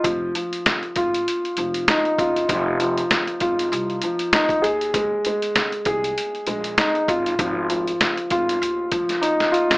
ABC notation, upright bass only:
X:1
M:4/4
L:1/16
Q:"Swing 16ths" 1/4=98
K:Fm
V:1 name="Upright bass" clef=bass
F,,,2 z4 A,,,2 z2 F,,,2 z2 _G,,,2 | F,,,4 z2 A,,,2 C,,2 z4 E,,2- | E,,2 z4 C,,2 z2 B,,,2 z2 A,,,2 | A,,,4 z2 A,,,2 E,,2 z4 z _G,,, |]